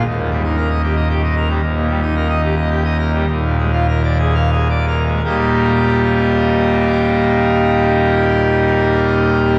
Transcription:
<<
  \new Staff \with { instrumentName = "Pipe organ" } { \time 3/4 \key ees \major \tempo 4 = 93 ees,16 bes,16 g16 ees'16 bes'16 ees''16 g'16 ees''16 g'16 ees''16 bes'16 g16 | ees,16 bes,16 g16 ees'16 bes'16 ees''16 g'16 ees''16 g'16 ees''16 bes'16 g16 | ees,16 bes,16 aes16 f'16 bes'16 d''16 aes'16 f''16 aes'16 d''16 bes'16 aes16 | <ees, bes, g bes ees' g'>2.~ |
<ees, bes, g bes ees' g'>2. | }
  \new Staff \with { instrumentName = "Pipe organ" } { \clef bass \time 3/4 \key ees \major ees,,2. | ees,,2. | ees,,2. | ees,,2.~ |
ees,,2. | }
>>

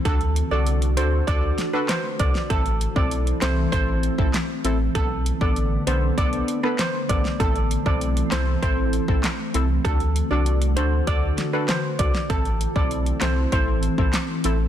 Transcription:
<<
  \new Staff \with { instrumentName = "Steel pan" } { \time 4/4 \key a \dorian \tempo 4 = 98 a'16 r8 d''16 r8 c''16 r16 d''16 r8 b'16 c''16 r16 d''16 r16 | a'16 r8 d''16 r8 c''16 r16 c''8. r4 r16 | a'16 r8 d''16 r8 c''16 r16 d''16 r8 b'16 c''16 r16 d''16 r16 | a'16 r8 d''16 r8 c''16 r16 c''8. r4 r16 |
a'16 r8 d''16 r8 c''16 r16 d''16 r8 b'16 c''16 r16 d''16 r16 | a'16 r8 d''16 r8 c''16 r16 c''8. r4 r16 | }
  \new Staff \with { instrumentName = "Synth stab" } { \time 4/4 \key a \dorian <d' fis' a'>16 r8 <d' fis' a'>8. <d' fis' a'>8 <d' fis' a'>8. <d' fis' a'>16 r8 <d' fis' a'>16 r16 | <c' e' a'>16 r8 <c' e' a'>8. <c' e' a'>8 <c' e' a'>8. <c' e' a'>16 r8 <c' e' a'>16 r16 | <b d' a'>16 r8 <b d' a'>8. <b d' a'>8 <b d' a'>8. <b d' a'>16 r8 <b d' a'>16 r16 | <c' e' a'>16 r8 <c' e' a'>8. <c' e' a'>8 <c' e' a'>8. <c' e' a'>16 r8 <c' e' a'>16 r16 |
<d' fis' a'>16 r8 <d' fis' a'>8. <d' fis' a'>8 <d' fis' a'>8. <d' fis' a'>16 r8 <d' fis' a'>16 r16 | <c' e' a'>16 r8 <c' e' a'>8. <c' e' a'>8 <c' e' a'>8. <c' e' a'>16 r8 <c' e' a'>16 r16 | }
  \new Staff \with { instrumentName = "Ambient pad" } { \time 4/4 \key a \dorian << { <d fis'>1 | <e c'>1 | <d b>1 | <e c'>1 |
<d fis'>1 | <e c'>1 | } \\ { a1~ | a1~ | a1~ | a1~ |
a1 | a1 | } >> }
  \new Staff \with { instrumentName = "Sub bass" } { \clef bass \time 4/4 \key a \dorian d,8. c,8. d,8 d,8 r4 c,16 r16 | a,,8. b,,8. c,8 a,,8. a,,16 r8 a,,8 | b,,8. a,,8. b,,8 b,,8 r4 a,,16 r16 | a,,8. b,,8. c,8 a,,8. a,,16 r8 c,8 |
d,8. c,8. d,8 d,8 r4 c,16 r16 | a,,8. b,,8. c,8 a,,8. a,,16 r8 a,,8 | }
  \new DrumStaff \with { instrumentName = "Drums" } \drummode { \time 4/4 <hh bd>16 hh16 hh8 hh16 hh16 hh8 <hh bd>8 <hh sn>8 <hc hh sn>8 <hh bd>16 sn16 | <hh bd>16 hh16 hh16 bd16 hh16 hh16 <hc hh sn>8 <hh bd>8 hh16 bd16 <hc hh sn>8 hh8 | <hh bd>8 hh16 bd16 hh8 hh8 <hh bd>16 hh16 hh16 ss16 <hc hh sn>8 <hh bd>16 sn16 | <hh bd>16 hh16 hh16 bd16 hh16 hh16 <hc hh sn>8 <hh bd>8 hh16 bd16 <hc hh sn>8 hh8 |
<hh bd>16 hh16 hh8 hh16 hh16 hh8 <hh bd>8 <hh sn>8 <hc hh sn>8 <hh bd>16 sn16 | <hh bd>16 hh16 hh16 bd16 hh16 hh16 <hc hh sn>8 <hh bd>8 hh16 bd16 <hc hh sn>8 hh8 | }
>>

